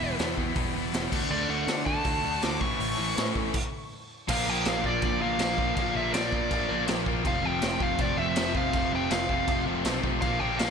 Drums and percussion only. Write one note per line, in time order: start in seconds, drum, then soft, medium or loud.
0.19 snare loud
0.19 open hi-hat medium
0.37 kick medium
0.55 kick loud
0.55 open hi-hat medium
0.94 snare loud
0.94 open hi-hat medium
1.12 kick loud
1.12 crash loud
1.68 snare loud
1.68 open hi-hat medium
1.86 kick medium
2.04 kick loud
2.04 open hi-hat medium
2.42 snare loud
2.42 open hi-hat medium
2.61 kick loud
2.80 open hi-hat medium
3.17 snare loud
3.17 open hi-hat medium
3.36 kick medium
3.54 kick loud
3.54 crash loud
4.28 kick loud
4.28 crash loud
4.28 crash medium
4.65 snare loud
4.65 crash medium
4.84 kick medium
5.02 kick loud
5.02 crash medium
5.39 snare loud
5.39 crash medium
5.58 kick medium
5.77 kick loud
5.77 crash medium
6.14 snare loud
6.14 crash medium
6.32 kick medium
6.51 kick loud
6.51 crash medium
6.88 snare loud
6.88 crash medium
7.06 kick loud
7.25 kick loud
7.25 crash medium
7.62 snare loud
7.62 crash medium
7.80 kick medium
7.99 kick loud
7.99 crash medium
8.36 snare loud
8.36 crash medium
8.55 kick medium
8.73 kick loud
8.73 crash medium
9.11 snare loud
9.11 crash medium
9.29 kick medium
9.48 kick loud
9.48 crash medium
9.85 snare loud
9.85 crash medium
10.04 kick medium
10.22 kick loud
10.22 crash medium
10.59 snare loud
10.59 crash medium